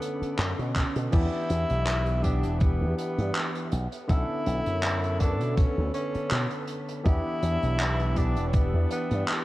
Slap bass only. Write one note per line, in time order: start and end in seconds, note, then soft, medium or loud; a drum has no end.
0.22 muted slap bass stroke soft
0.39 0.52 F#2 loud
0.59 0.83 B2 medium
0.96 1.07 B2 medium
1.13 1.27 E2 loud
1.50 1.64 E2 loud
1.70 2.44 B1 loud
2.44 2.83 E1 loud
2.81 2.93 E2 medium
3.18 3.30 G2 loud
3.72 3.86 B1 medium
4.09 4.23 B1 loud
4.47 4.60 B1 loud
4.67 5.41 F#2 loud
5.41 5.65 B2 loud
5.78 5.89 D2 medium
6.15 muted slap bass stroke soft
6.32 6.45 B2 medium
7.06 7.19 E2 loud
7.42 7.56 E2 loud
7.63 8.37 B1 medium
8.37 8.74 E1 loud
8.74 8.85 E2 loud
9.11 9.23 G2 loud